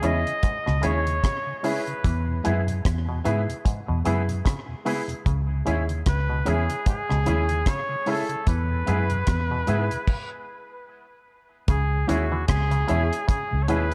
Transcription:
0.01 E2 C#3 G#3 C#4 E4 G#4 C#5 D#5 E5, closed hi-hat
0.26 C#3, closed hi-hat
0.43 G#2, kick, closed hi-hat
0.66 C#2 B2 C#3, cross-stick
0.81 D#2 C#3 G#3 C#4 E4 G#4 C#5 E5, closed hi-hat
1.07 C#3, closed hi-hat
1.24 C#3, kick, cross-stick, closed hi-hat
1.47 C#3
1.59 C#4 C#5
1.63 C#3 G#3 C#4 E4 G#4 B4 C#5 E5, open hi-hat
1.87 C#3, closed hi-hat
2.04 E2 E3, kick, closed hi-hat
2.28 E2 B2
2.43 F#2 G#2 G#3 B3 E4 G#4 B4 E5, closed hi-hat
2.67 E2 B2, closed hi-hat
2.85 E2, kick, cross-stick, closed hi-hat
3.07 E2 B2
3.24 G#2 C#3 G#3 B3 E4 G#4 B4 E5, closed hi-hat
3.48 E2 B2, closed hi-hat
3.65 G#2, kick, closed hi-hat
3.88 E2 B2
4.04 F#2 C#3 G#3 B3 E4 G#4 B4 E5, closed hi-hat
4.28 E2 B2, closed hi-hat
4.45 C#3, kick, cross-stick, closed hi-hat
4.68 E2 B2
4.85 C#3 G#3 B3 E4 G#4 B4 E5, open hi-hat
5.08 E2 B2, closed hi-hat
5.26 C#2 C#3, kick, closed hi-hat
5.48 C#3
5.65 D#2 G#2 G#3 C#4 E4 G#4 C#5 E5, closed hi-hat
5.88 C#3, closed hi-hat
6.06 C#2 B4, kick, cross-stick, closed hi-hat
6.29 B2 C#3
6.45 E2 C#3 G#3 C#4 E4 G#4 C#5 E5, closed hi-hat
6.69 C#3, closed hi-hat
6.86 G#2 G#4, kick, closed hi-hat
7.09 C#2 B2 C#3, cross-stick
7.26 D#2 C#3 G#3 C#4 E4 G#4 C#5 E5, closed hi-hat
7.49 C#3, closed hi-hat
7.66 C#3 C#5, kick, cross-stick, closed hi-hat
7.89 C#3
8.06 C#3 G#3 C#4 E4 G#4 C#5 E5, open hi-hat
8.10 A4
8.29 C#3, closed hi-hat
8.47 E2 E3 B4, kick, closed hi-hat
8.69 E2 B2
8.86 F#2 G#2 G#3 B3 E4 G#4 B4 E5, closed hi-hat
9.10 E2 B2, closed hi-hat
9.27 E2, kick, cross-stick, closed hi-hat
9.50 E2 B2
9.67 G#2 C#3 G#3 B3 E4 G#4 B4 E5, closed hi-hat
9.91 E2 B2, closed hi-hat
10.07 kick, crash
11.68 C#2 C#3 G#4, kick, closed hi-hat
11.91 C#3
12.07 D#2 E3 G#3 C#4 E4 F#4 G#4 C#5 E5, closed hi-hat
12.30 C#3 E3
12.48 C#2 G#4, kick, cross-stick, closed hi-hat
12.70 C#3, closed hi-hat
12.87 E2 B2 G#3 C#4 E4 G#4 C#5 E5, closed hi-hat
13.13 closed hi-hat
13.28 C#3 G#4, kick, closed hi-hat
13.51 C#2 C#3
13.63 C#5
13.68 D#2 B2 G#3 C#4 E4 G#4 B4 C#5 E5, closed hi-hat
13.91 C#3

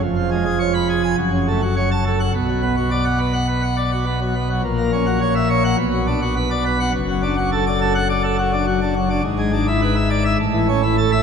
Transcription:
0.02 F1 F2
0.17 F3
0.31 G#3
0.45 G#4
0.59 C#5
0.74 B5
0.89 G#4
1.03 G#5
1.18 F#1 F#2
1.33 C#3
1.48 A3
1.62 F#4
1.76 C#5
1.91 A5
2.06 A4
2.20 F#5
2.34 B1 B2
2.48 F#3
2.62 B3
2.76 F#4
2.91 D5
3.05 F#5
3.19 B4
3.33 F#5
3.48 B4
3.62 F#5
3.77 D5
3.91 F#4
4.06 B3
4.21 F#3
4.35 B3
4.49 F#3
4.64 A#1 A#2
4.78 A#3
4.93 C#4
5.06 F#4
5.21 C#5
5.35 E5
5.50 C#5
5.64 F#5
5.78 B1 B2
5.93 F#3
6.07 D4
6.22 F#4
6.36 B4
6.51 D5
6.66 B4
6.80 F#5
6.94 F#1 F#2
7.09 F#3
7.23 D4
7.37 F#4
7.52 A4
7.67 D5
7.80 A4
7.95 F#5
8.10 D5
8.24 A4
8.38 F#4
8.53 D4
8.67 F#3
8.81 D4
8.96 F#3
9.10 D4
9.24 G#1 G#2
9.39 G#3
9.53 D4
9.68 E4
9.82 B4
9.96 E5
10.10 D5
10.25 E5
10.40 A1 A2
10.54 E3
10.69 C#4
10.83 E4
10.98 A4
11.12 E5

